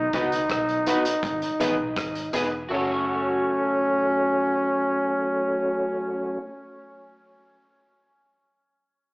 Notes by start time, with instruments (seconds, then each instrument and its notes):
Already playing: fingered electric bass B1, flugelhorn D#4
0.13 fingered electric bass C#2, tonewheel organ D#3 F#3 B3, upright piano B3 D#4 F#4 B4, clean electric guitar F#4 B4 D#5, kick, closed hi-hat
0.32 tonewheel organ B2, closed hi-hat
0.50 fingered electric bass B1, kick, cross-stick, closed hi-hat
0.69 tonewheel organ B2, closed hi-hat
0.86 tonewheel organ D#3 F#3 B3, upright piano B3 D#4 F#4 B4, clean electric guitar F#4 B4 D#5, closed hi-hat
1.05 tonewheel organ B2, muted clean electric guitar stroke, closed hi-hat
1.23 fingered electric bass G#1, kick, closed hi-hat
1.42 tonewheel organ G#2, closed hi-hat
1.60 fingered electric bass A1, tonewheel organ D#3 G#3 B3, upright piano B3 D#4 G#4 B4, clean electric guitar G#4 B4 D#5, closed hi-hat
1.79 fingered electric bass B1, tonewheel organ G#2
1.96 fingered electric bass G#1, kick, cross-stick, closed hi-hat
2.15 tonewheel organ G#2, closed hi-hat
2.33 fingered electric bass E1, tonewheel organ D#3 G#3 B3, upright piano B3 D#4 G#4 B4, clean electric guitar G#4 B4 D#5, closed hi-hat
2.51 muted clean electric guitar stroke
2.69 fingered electric bass F#1, tonewheel organ F#3 A3 C#4, upright piano A3 C#4 F#4 A4, flugelhorn C#4, clean electric guitar F#4 A4
2.74 clean electric guitar C#5